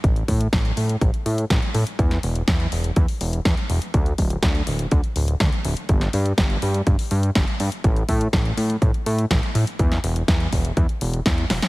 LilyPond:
<<
  \new Staff \with { instrumentName = "Analog synth bass" } { \clef bass \time 4/4 \key e \phrygian \tempo 4 = 123 a,,8 a,8 a,,8 a,8 a,,8 a,8 a,,8 a,8 | e,8 e,,8 e,8 e,,8 e,8 e,,8 e,8 e,,8 | d,8 d,,8 d,8 d,,8 d,8 d,,8 d,8 d,,8 | g,,8 g,8 g,,8 g,8 g,,8 g,8 g,,8 g,8 |
a,,8 a,8 a,,8 a,8 a,,8 a,8 a,,8 a,8 | e,8 e,,8 e,8 e,,8 e,8 e,,8 e,8 e,,8 | }
  \new DrumStaff \with { instrumentName = "Drums" } \drummode { \time 4/4 <hh bd>16 hh16 <hho bd>16 hh16 <hh bd sn>16 hh16 hho16 hh16 <hh bd>16 hh16 hho16 hh16 <hh bd sn>16 hh16 hho16 hh16 | <hh bd>16 <hh sn>16 hho16 hh16 <hh bd sn>16 hh16 hho16 hh16 <hh bd>16 hho16 hho16 hh16 <hh bd sn>16 hh16 hho16 hh16 | <hh bd>16 hh16 <hho bd>16 hh16 <hh bd sn>16 hh16 hho16 hh16 <hh bd>16 hh16 hho16 hh16 <hh bd sn>16 hh16 hho16 hh16 | <hh bd>16 <hh sn>16 hho16 hh16 <hh bd sn>16 hh16 hho16 hh16 <hh bd>16 hho16 hho16 hh16 <hh bd sn>16 hh16 hho16 hh16 |
<hh bd>16 hh16 <hho bd>16 hh16 <hh bd sn>16 hh16 hho16 hh16 <hh bd>16 hh16 hho16 hh16 <hh bd sn>16 hh16 hho16 hh16 | <hh bd>16 <hh sn>16 hho16 hh16 <hh bd sn>16 hh16 <hho bd>16 hh16 <hh bd>16 hh16 hho16 hh16 <hh bd sn>16 hh16 <hho sn>16 <hh sn>16 | }
>>